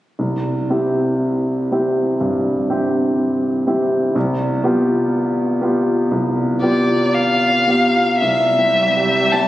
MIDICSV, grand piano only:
0, 0, Header, 1, 2, 480
1, 0, Start_track
1, 0, Key_signature, 0, "major"
1, 0, Tempo, 1025641
1, 88, Time_signature, 4, 2, 24, 8
1, 568, Tempo, 978793
1, 2968, Tempo, 1018676
1, 3448, Tempo, 1098901
1, 4476, End_track
2, 0, Start_track
2, 0, Title_t, "Grand piano"
2, 0, Program_c, 0, 0
2, 89, Note_on_c, 0, 36, 31
2, 161, Control_c, 0, 64, 127
2, 322, Note_off_c, 0, 36, 0
2, 328, Note_on_c, 0, 60, 23
2, 329, Note_on_c, 0, 64, 25
2, 333, Note_on_c, 0, 67, 29
2, 793, Note_off_c, 0, 60, 0
2, 793, Note_off_c, 0, 64, 0
2, 795, Note_off_c, 0, 67, 0
2, 815, Note_on_c, 0, 60, 23
2, 817, Note_on_c, 0, 64, 21
2, 818, Note_on_c, 0, 67, 23
2, 1034, Note_off_c, 0, 60, 0
2, 1035, Note_off_c, 0, 64, 0
2, 1036, Note_off_c, 0, 67, 0
2, 1055, Note_on_c, 0, 43, 33
2, 1285, Note_off_c, 0, 43, 0
2, 1296, Note_on_c, 0, 60, 25
2, 1297, Note_on_c, 0, 64, 26
2, 1300, Note_on_c, 0, 67, 26
2, 1753, Note_off_c, 0, 60, 0
2, 1754, Note_off_c, 0, 64, 0
2, 1755, Note_off_c, 0, 67, 0
2, 1772, Note_on_c, 0, 60, 27
2, 1775, Note_on_c, 0, 64, 26
2, 1775, Note_on_c, 0, 67, 30
2, 1990, Note_off_c, 0, 60, 0
2, 1992, Note_off_c, 0, 64, 0
2, 1992, Note_off_c, 0, 67, 0
2, 2010, Note_on_c, 0, 36, 41
2, 2018, Control_c, 0, 64, 0
2, 2092, Control_c, 0, 64, 127
2, 2239, Note_off_c, 0, 36, 0
2, 2247, Note_on_c, 0, 59, 30
2, 2249, Note_on_c, 0, 67, 35
2, 2250, Note_on_c, 0, 65, 31
2, 2703, Note_off_c, 0, 59, 0
2, 2705, Note_off_c, 0, 65, 0
2, 2705, Note_off_c, 0, 67, 0
2, 2725, Note_on_c, 0, 59, 24
2, 2726, Note_on_c, 0, 67, 30
2, 2728, Note_on_c, 0, 65, 27
2, 2950, Note_off_c, 0, 59, 0
2, 2951, Note_off_c, 0, 67, 0
2, 2952, Note_off_c, 0, 65, 0
2, 2970, Note_on_c, 0, 36, 39
2, 3201, Note_off_c, 0, 36, 0
2, 3210, Note_on_c, 0, 59, 27
2, 3211, Note_on_c, 0, 65, 30
2, 3214, Note_on_c, 0, 67, 35
2, 3665, Note_off_c, 0, 59, 0
2, 3666, Note_off_c, 0, 65, 0
2, 3667, Note_off_c, 0, 67, 0
2, 3687, Note_on_c, 0, 59, 26
2, 3690, Note_on_c, 0, 65, 24
2, 3692, Note_on_c, 0, 67, 26
2, 3904, Note_off_c, 0, 59, 0
2, 3906, Note_off_c, 0, 65, 0
2, 3907, Note_off_c, 0, 67, 0
2, 3925, Note_on_c, 0, 36, 36
2, 3928, Control_c, 0, 64, 0
2, 4003, Control_c, 0, 64, 127
2, 4086, Note_on_c, 0, 60, 24
2, 4250, Note_on_c, 0, 67, 29
2, 4348, Note_off_c, 0, 60, 0
2, 4412, Note_on_c, 0, 60, 26
2, 4476, Note_off_c, 0, 36, 0
2, 4476, Note_off_c, 0, 60, 0
2, 4476, Note_off_c, 0, 67, 0
2, 4476, End_track
0, 0, End_of_file